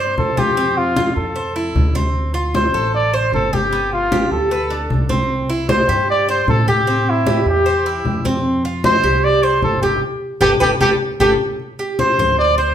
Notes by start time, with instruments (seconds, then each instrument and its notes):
Already playing: upright bass G2
0.00 trumpet C5, cuban tres C5
0.17 upright bass F2, trumpet A4, high conga
0.37 cuban tres F4, trumpet G4, high conga
0.57 cuban tres C4, high conga
0.77 trumpet F4, high conga
0.96 cuban tres F4, high conga
1.16 upright bass F2, trumpet A4, high conga
1.36 cuban tres C5, high conga
1.56 cuban tres E4, high conga
1.75 upright bass D2, high conga
1.95 cuban tres C4, high conga
2.15 high conga
2.34 cuban tres F4, high conga
2.55 cuban tres C5, trumpet C5, high conga
2.73 upright bass A1, cuban tres A4, high conga
2.94 trumpet D5, high conga
3.14 cuban tres C5, trumpet C5, high conga
3.32 upright bass G1, trumpet A4, high conga
3.53 cuban tres G4, trumpet G4, high conga
3.72 cuban tres B3, high conga
3.92 trumpet F4, high conga
4.12 cuban tres G4, high conga
4.31 upright bass D2, trumpet A4, high conga
4.51 cuban tres B4, high conga
4.70 cuban tres D4, high conga
4.90 upright bass C2, high conga
5.09 cuban tres C4, high conga
5.30 high conga
5.49 cuban tres E4, high conga
5.69 cuban tres C5, trumpet C5, high conga
5.88 upright bass G2, cuban tres G4, high conga
6.08 trumpet D5, high conga
6.29 cuban tres C5, trumpet C5, high conga
6.47 upright bass A2, trumpet A4, high conga
6.68 cuban tres G4, trumpet G4, high conga
6.87 cuban tres C4, high conga
7.07 trumpet E4, high conga
7.26 cuban tres G4, high conga
7.45 upright bass E2, trumpet G4, high conga
7.66 cuban tres C5, high conga
7.86 cuban tres E4, high conga
8.04 upright bass F2, high conga
8.25 cuban tres C4, high conga
8.45 high conga
8.65 cuban tres F4, high conga
8.84 cuban tres C5, trumpet C5, high conga
9.03 upright bass C2, cuban tres G4, high conga
9.23 trumpet D5, high conga
9.43 cuban tres C5, trumpet C5, high conga
9.62 upright bass G1, trumpet A4, high conga
9.82 trumpet G4, cuban tres G4, high conga
10.41 upright bass G1, cuban tres G4 A4 B4, trumpet G4, high conga
10.60 upright bass G1, cuban tres G4 A4 B4, trumpet G4, high conga
10.81 upright bass G1, cuban tres G4 A4 B4, trumpet G4, high conga
11.20 upright bass G1, cuban tres G4 A4 B4, trumpet G4, high conga
11.59 high conga
11.79 cuban tres G4, high conga
11.99 cuban tres C5, trumpet C5, high conga
12.18 upright bass D2, cuban tres C5, high conga, low conga
12.38 trumpet D5, high conga
12.58 cuban tres C5, trumpet C5, high conga